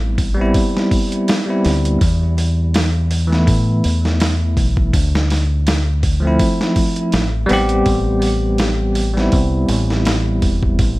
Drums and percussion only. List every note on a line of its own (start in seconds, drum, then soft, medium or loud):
0.18 kick medium
0.18 open hi-hat medium
0.54 kick loud
0.54 open hi-hat medium
0.77 snare soft
0.91 kick medium
0.91 open hi-hat medium
1.12 closed hi-hat soft
1.28 snare loud
1.28 open hi-hat medium
1.65 snare soft
1.65 open hi-hat medium
1.85 closed hi-hat soft
2.01 kick loud
2.01 open hi-hat medium
2.38 open hi-hat medium
2.74 snare loud
2.74 open hi-hat medium
3.11 open hi-hat medium
3.33 snare soft
3.47 kick loud
3.47 open hi-hat medium
3.84 open hi-hat medium
4.05 snare soft
4.20 snare loud
4.20 open hi-hat medium
4.57 kick medium
4.57 open hi-hat medium
4.77 kick medium
4.93 kick loud
4.93 open hi-hat medium
5.15 snare medium
5.30 snare soft
5.30 open hi-hat medium
5.67 snare loud
5.67 open hi-hat medium
6.03 kick medium
6.03 open hi-hat medium
6.39 kick loud
6.39 open hi-hat medium
6.61 snare soft
6.76 kick medium
6.76 open hi-hat medium
6.96 closed hi-hat soft
7.12 snare loud
7.12 open hi-hat medium
7.49 snare soft
7.49 open hi-hat medium
7.69 closed hi-hat soft
7.86 kick loud
7.86 open hi-hat medium
8.22 open hi-hat medium
8.58 snare loud
8.58 open hi-hat medium
8.95 open hi-hat medium
9.17 snare soft
9.32 kick loud
9.32 open hi-hat medium
9.69 open hi-hat medium
9.90 snare soft
10.05 snare loud
10.05 open hi-hat medium
10.42 kick medium
10.42 open hi-hat medium
10.63 kick medium
10.79 kick loud
10.79 open hi-hat medium